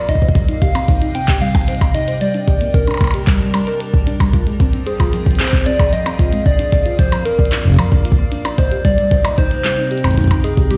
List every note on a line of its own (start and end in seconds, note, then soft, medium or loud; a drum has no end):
0.00 0.94 A#3 medium
0.00 0.10 D5 loud
0.00 0.94 F5 medium
0.09 2.21 C3 medium
0.09 0.14 D#4 medium
0.09 0.61 D#5 loud
0.09 kick soft
0.09 closed hi-hat medium
0.15 kick medium
0.22 0.28 C5 medium
0.22 2.21 D#5 medium
0.22 kick medium
0.29 kick medium
0.35 0.41 G3 medium
0.35 3.06 C4 medium
0.35 kick loud
0.35 closed hi-hat medium
0.49 0.61 D#4 medium
0.49 5.18 G5 medium
0.49 closed hi-hat medium
0.62 0.71 G4 medium
0.62 1.16 F5 loud
0.62 kick loud
0.62 closed hi-hat medium
0.75 0.85 C4 medium
0.75 closed hi-hat soft
0.75 percussion blips soft
0.88 0.98 D#4 medium
0.88 kick loud
0.88 closed hi-hat medium
1.02 1.07 D#4 loud
1.02 closed hi-hat medium
1.15 1.24 C4 medium
1.15 1.43 G5 loud
1.15 closed hi-hat medium
1.28 1.34 G4 medium
1.28 kick loud
1.28 clap loud
1.41 1.51 G3 loud
1.41 1.96 F5 loud
1.55 1.64 G3 medium
1.55 kick loud
1.55 closed hi-hat soft
1.55 percussion blips soft
1.61 closed hi-hat soft
1.68 1.74 C5 medium
1.68 closed hi-hat medium
1.75 closed hi-hat soft
1.81 1.94 D#5 loud
1.81 kick loud
1.81 percussion blips soft
1.95 2.00 D#4 medium
1.95 2.23 D#5 loud
1.95 closed hi-hat medium
2.08 2.14 C5 medium
2.08 closed hi-hat medium
2.21 2.27 G3 medium
2.21 4.34 G3 medium
2.21 2.76 D5 loud
2.21 closed hi-hat medium
2.32 2.47 D4 medium
2.32 5.19 A#4 medium
2.32 closed hi-hat soft
2.44 5.18 D4 medium
2.44 2.57 G4 medium
2.44 kick loud
2.44 closed hi-hat medium
2.61 2.70 A#3 medium
2.61 closed hi-hat medium
2.74 2.84 D4 medium
2.74 3.80 A#4 medium
2.74 kick loud
2.74 closed hi-hat medium
2.87 2.93 D4 loud
2.87 closed hi-hat soft
2.87 percussion blips soft
2.91 percussion blips soft
2.94 percussion blips soft
2.97 3.10 A#3 medium
2.97 kick loud
2.97 closed hi-hat medium
2.97 percussion blips soft
3.01 percussion blips soft
3.04 percussion blips soft
3.07 percussion blips soft
3.11 3.20 G4 medium
3.11 closed hi-hat medium
3.11 percussion blips soft
3.27 3.37 G3 loud
3.27 kick loud
3.27 clap loud
3.27 closed hi-hat medium
3.41 3.50 G3 medium
3.54 3.63 G3 loud
3.54 closed hi-hat medium
3.54 percussion blips medium
3.67 3.73 A#4 loud
3.67 closed hi-hat medium
3.80 3.90 A#4 medium
3.80 closed hi-hat medium
3.94 4.06 D4 medium
3.94 kick loud
4.07 4.16 D4 loud
4.07 closed hi-hat medium
4.20 4.26 G3 loud
4.20 kick loud
4.20 closed hi-hat soft
4.20 percussion blips soft
4.33 6.46 F3 medium
4.33 4.43 F4 medium
4.33 kick loud
4.33 closed hi-hat medium
4.40 7.31 C4 medium
4.47 4.56 G#3 medium
4.47 7.25 G#4 medium
4.47 closed hi-hat soft
4.53 9.43 F5 medium
4.60 4.70 C4 medium
4.60 kick loud
4.60 closed hi-hat medium
4.73 4.79 C4 loud
4.73 closed hi-hat soft
4.87 5.41 G#4 medium
4.87 4.92 C5 medium
4.87 closed hi-hat medium
5.00 5.06 F4 medium
5.00 kick loud
5.00 closed hi-hat soft
5.00 percussion blips soft
5.13 5.23 F3 loud
5.13 closed hi-hat medium
5.26 5.36 F3 medium
5.26 kick loud
5.26 closed hi-hat soft
5.31 closed hi-hat soft
5.35 closed hi-hat soft
5.40 5.45 G#4 medium
5.40 5.68 C5 loud
5.40 clap loud
5.40 closed hi-hat medium
5.43 clap medium
5.46 clap medium
5.50 5.66 C5 loud
5.50 clap medium
5.53 kick loud
5.53 clap medium
5.56 clap soft
5.60 clap soft
5.63 5.72 C4 medium
5.63 5.94 D5 loud
5.63 clap soft
5.63 closed hi-hat medium
5.79 5.85 G#4 medium
5.79 kick loud
5.79 closed hi-hat soft
5.79 percussion blips soft
5.93 5.98 F3 medium
5.93 6.45 D#5 loud
5.93 closed hi-hat medium
6.06 6.19 C4 medium
6.06 percussion blips soft
6.19 6.29 F4 medium
6.19 kick loud
6.19 closed hi-hat medium
6.33 6.42 G#3 medium
6.33 closed hi-hat soft
6.46 8.58 A#2 medium
6.46 6.55 D4 medium
6.46 7.00 D5 loud
6.46 kick loud
6.52 9.43 A#3 medium
6.59 6.65 D4 loud
6.59 closed hi-hat medium
6.72 6.78 D5 medium
6.72 kick loud
6.72 closed hi-hat medium
6.86 6.91 F4 medium
6.86 closed hi-hat soft
6.99 7.08 F3 loud
6.99 7.27 C5 loud
6.99 kick loud
6.99 closed hi-hat medium
7.03 8.58 D5 medium
7.12 7.22 F3 medium
7.12 closed hi-hat soft
7.12 percussion blips soft
7.25 8.32 A#4 medium
7.25 7.31 A#4 medium
7.25 closed hi-hat medium
7.39 7.51 D5 medium
7.39 kick loud
7.45 closed hi-hat soft
7.52 7.58 D4 medium
7.52 clap loud
7.52 closed hi-hat medium
7.65 7.71 A#4 medium
7.65 kick medium
7.68 kick medium
7.70 kick medium
7.72 kick medium
7.74 kick medium
7.76 7.84 F3 medium
7.76 kick loud
7.76 closed hi-hat medium
7.76 percussion blips medium
7.92 8.05 D4 medium
7.92 kick loud
8.05 8.15 F4 medium
8.05 closed hi-hat medium
8.12 kick loud
8.18 8.28 A#3 medium
8.32 8.41 D4 medium
8.32 closed hi-hat medium
8.45 8.51 D4 loud
8.45 closed hi-hat soft
8.45 percussion blips medium
8.58 10.71 C3 medium
8.58 8.86 C5 loud
8.58 8.64 D#5 medium
8.58 kick loud
8.58 closed hi-hat medium
8.65 10.71 D#4 medium
8.71 8.77 G4 medium
8.71 closed hi-hat soft
8.81 8.94 G3 loud
8.81 10.77 C4 medium
8.81 9.37 D5 loud
8.81 kick loud
8.81 closed hi-hat medium
8.98 9.08 G3 medium
8.98 closed hi-hat medium
9.11 9.17 C5 medium
9.11 kick loud
9.11 closed hi-hat medium
9.15 10.77 G5 medium
9.25 9.37 D#5 loud
9.25 closed hi-hat soft
9.25 percussion blips medium
9.38 9.44 D#4 medium
9.38 10.46 C5 loud
9.38 kick loud
9.38 closed hi-hat medium
9.51 9.57 C5 medium
9.51 closed hi-hat soft
9.64 9.70 G3 medium
9.64 clap loud
9.64 closed hi-hat medium
9.78 9.90 D#4 medium
9.91 10.00 G4 medium
9.91 closed hi-hat soft
9.98 closed hi-hat soft
10.04 10.14 C4 medium
10.04 kick soft
10.04 closed hi-hat medium
10.04 percussion blips medium
10.08 kick medium
10.11 kick medium
10.11 closed hi-hat medium
10.14 kick medium
10.18 10.27 D#4 medium
10.18 kick medium
10.18 closed hi-hat medium
10.21 kick medium
10.24 kick medium
10.28 kick loud
10.31 10.37 D#4 loud
10.31 kick loud
10.31 percussion blips medium
10.44 10.72 G#4 loud
10.44 10.50 D#5 medium
10.44 closed hi-hat medium
10.57 10.63 G4 medium
10.57 kick loud
10.57 closed hi-hat soft
10.71 10.77 G3 medium
10.71 10.77 G4 loud
10.71 closed hi-hat medium